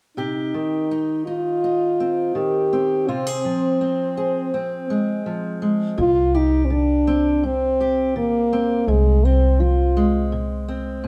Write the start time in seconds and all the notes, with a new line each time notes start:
0.17 C3 D#4 G4
0.54 D#3
0.91 D#4
1.26 D#4 F4
1.64 D#4
2.00 C4
2.35 D#3 G4
2.73 C4
3.07 C3 C4 F4
3.27 G#4
3.45 F3
3.81 C4
4.17 G#4
4.54 C4
4.90 G#3
5.26 F3
5.62 G#3
5.98 C2 C3 F4
6.35 D#4 G4
6.65 C4
6.70 D#3 D4
7.07 C4
7.43 G2 C4
7.81 G4
8.16 D#3 A#3
8.53 C4
8.87 C2 C3 G#3
9.24 C4
9.60 F3 F4
9.97 G#3
10.32 C3
10.68 C4
11.04 A#2